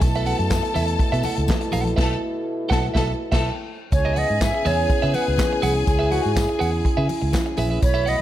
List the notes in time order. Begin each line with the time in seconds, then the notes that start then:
0.01 B1 B2 A3 E4 A4 A5, muted clean electric guitar stroke, kick, closed hi-hat, tambourine
0.15 A4 B4 E5, closed hi-hat
0.25 A4 B4 F#5, open hi-hat, tambourine, muted conga
0.39 F#2, muted clean electric guitar stroke, closed hi-hat
0.50 muted clean electric guitar stroke, kick, snare, clap, tambourine, high conga
0.63 muted clean electric guitar stroke, closed hi-hat
0.74 E2 A4 B4 E5, open hi-hat, tambourine, low conga
0.87 muted clean electric guitar stroke, closed hi-hat
0.99 muted clean electric guitar stroke, kick, closed hi-hat
1.12 B2 A4 B4 E5, closed hi-hat
1.23 A4 B4 F#5, open hi-hat, tambourine, muted conga, low conga
1.37 C#2, muted clean electric guitar stroke, closed hi-hat
1.48 kick, snare, clap, tambourine, high conga
1.61 muted clean electric guitar stroke, closed hi-hat
1.72 A#1 A4 B4 F#5, open hi-hat, tambourine, high conga
1.85 muted clean electric guitar stroke, closed hi-hat, high conga
1.96 B1 A4 B4 E5 A5, kick, snare, crash
2.69 B1 A4 B4 F#5 A5, kick, snare
2.94 B1 A4 B4 E5 A5, kick, snare
3.32 B1 A4 B4 E5 A5, kick, snare, crash
3.92 C#2 C#3 B3 E4 G#4 C#5 G#5, muted clean electric guitar stroke, kick, closed hi-hat, tambourine
4.05 G#4 B4 E5
4.15 G#4 B4 D#5 F#5, open hi-hat, muted conga
4.29 G#2, muted clean electric guitar stroke
4.41 E5, muted clean electric guitar stroke, kick, snare, clap, closed hi-hat, tambourine, high conga
4.55 muted clean electric guitar stroke
4.65 E2 G#4 B4 C#5 E5, open hi-hat, tambourine, low conga
4.78 muted clean electric guitar stroke
4.90 muted fingered electric bass stroke, muted clean electric guitar stroke, kick, closed hi-hat, tambourine, muted conga
5.02 C#3 G#4 B4 E5
5.14 G#4 B4 F#5, open hi-hat, tambourine, muted conga
5.27 C#2, muted clean electric guitar stroke
5.38 kick, snare, clap, closed hi-hat, tambourine, high conga
5.53 muted clean electric guitar stroke
5.62 C2 G#4 B4 F#5, open hi-hat, tambourine, high conga
5.75 muted clean electric guitar stroke
5.86 C#2 C#4 G#4, muted clean electric guitar stroke, kick, closed hi-hat, tambourine
5.99 G#4 B4 E5
6.11 F#4 G#4 B4 F#5, open hi-hat, tambourine, muted conga
6.24 G#2, muted clean electric guitar stroke
6.35 G#4, muted clean electric guitar stroke, kick, snare, clap, closed hi-hat, tambourine, high conga
6.49 muted clean electric guitar stroke
6.59 E2 G#4 B4 F#5, open hi-hat, tambourine
6.72 muted clean electric guitar stroke
6.85 muted clean electric guitar stroke, kick, closed hi-hat
6.97 C#3 G#4 B4 E5
7.09 open hi-hat, tambourine, muted conga
7.22 C#2, muted clean electric guitar stroke
7.33 muted clean electric guitar stroke, kick, snare, clap, closed hi-hat, tambourine, high conga
7.46 muted clean electric guitar stroke
7.57 A#1 G#4 B4 E5, open hi-hat, tambourine, high conga
7.70 G#4 B4 E5
7.81 B1 B2 A3 B4 C#5 B5, muted clean electric guitar stroke, kick, closed hi-hat, tambourine
7.94 A4 B4 E5
8.05 A4 B4 D#5 F#5, open hi-hat, tambourine, muted conga